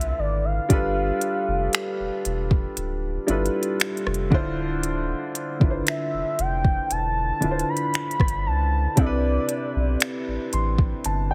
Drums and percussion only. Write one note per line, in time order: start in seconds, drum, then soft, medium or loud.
0.01 closed hi-hat medium
0.70 kick loud
0.70 closed hi-hat medium
1.21 closed hi-hat medium
1.73 finger snap loud
1.73 closed hi-hat medium
2.25 closed hi-hat medium
2.51 kick medium
2.77 closed hi-hat medium
3.28 closed hi-hat medium
3.46 closed hi-hat medium
3.63 closed hi-hat medium
3.80 finger snap loud
3.80 closed hi-hat medium
3.97 closed hi-hat medium
4.07 cross-stick medium
4.14 closed hi-hat medium
4.32 kick loud
4.83 closed hi-hat medium
5.35 closed hi-hat medium
5.61 kick medium
5.87 finger snap loud
5.87 closed hi-hat medium
6.39 closed hi-hat medium
6.65 kick medium
6.91 closed hi-hat medium
7.42 closed hi-hat medium
7.59 closed hi-hat medium
7.77 closed hi-hat medium
7.94 finger snap loud
7.94 closed hi-hat medium
8.11 closed hi-hat medium
8.20 kick medium
8.20 cross-stick medium
8.28 closed hi-hat medium
8.97 kick loud
8.97 closed hi-hat medium
9.49 closed hi-hat medium
10.00 finger snap loud
10.00 closed hi-hat medium
10.53 closed hi-hat medium
10.78 kick medium
11.05 closed hi-hat medium